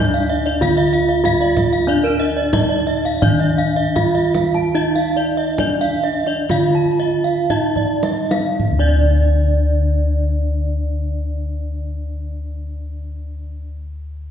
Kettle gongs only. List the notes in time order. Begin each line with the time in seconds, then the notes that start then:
Already playing: D2
0.62 D3
1.24 D#4
1.88 D4
2.53 D#4
3.23 D#3
3.96 D#4
4.75 D#4
5.60 D#4
6.51 D3
7.51 D#4
8.71 D2